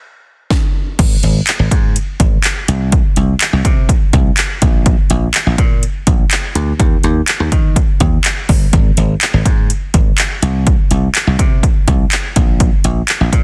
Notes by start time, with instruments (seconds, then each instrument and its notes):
0.50 kick, snare
0.99 slap bass G#1, kick, closed hi-hat, crash
1.23 slap bass G#1, closed hi-hat
1.47 clap, closed hi-hat
1.59 slap bass G#1
1.71 slap bass G#2, kick, closed hi-hat
1.96 closed hi-hat
2.20 slap bass G#1, kick, closed hi-hat
2.44 clap, closed hi-hat
2.68 slap bass C2, closed hi-hat
2.92 kick, closed hi-hat
3.16 slap bass C2, closed hi-hat
3.41 clap, closed hi-hat
3.53 slap bass C2
3.65 slap bass C3, kick, closed hi-hat
3.89 kick, closed hi-hat
4.13 slap bass C2, kick, closed hi-hat
4.37 clap, closed hi-hat
4.62 slap bass A#1, kick, closed hi-hat
4.86 kick, closed hi-hat
5.10 slap bass A#1, closed hi-hat
5.34 clap, closed hi-hat
5.46 slap bass A#1
5.58 slap bass A#2, kick, closed hi-hat
5.83 closed hi-hat
6.07 slap bass A#1, kick, closed hi-hat
6.31 clap, closed hi-hat
6.55 slap bass D2, closed hi-hat
6.80 slap bass D#2, kick, closed hi-hat
7.04 slap bass D#2, closed hi-hat
7.28 clap, closed hi-hat
7.40 slap bass D#2
7.52 slap bass D#3, kick, closed hi-hat
7.76 kick, closed hi-hat
8.00 slap bass D#2, kick, closed hi-hat
8.24 clap, closed hi-hat
8.49 slap bass G1, kick, open hi-hat
8.73 slap bass G#1, kick, closed hi-hat
8.97 slap bass G#1, closed hi-hat
9.21 clap, closed hi-hat
9.34 slap bass G#1
9.45 slap bass G#2, kick, closed hi-hat
9.70 closed hi-hat
9.94 slap bass G#1, kick, closed hi-hat
10.18 clap, closed hi-hat
10.42 slap bass C2, closed hi-hat
10.67 kick, closed hi-hat
10.91 slap bass C2, closed hi-hat
11.15 clap, closed hi-hat
11.27 slap bass C2
11.39 slap bass C3, kick, closed hi-hat
11.63 kick, closed hi-hat
11.88 slap bass C2, kick, closed hi-hat
12.12 clap, closed hi-hat
12.36 slap bass A#1, kick, closed hi-hat
12.60 kick, closed hi-hat
12.84 slap bass A#1, closed hi-hat
13.08 clap, closed hi-hat
13.21 slap bass A#1
13.33 slap bass A#2, kick, closed hi-hat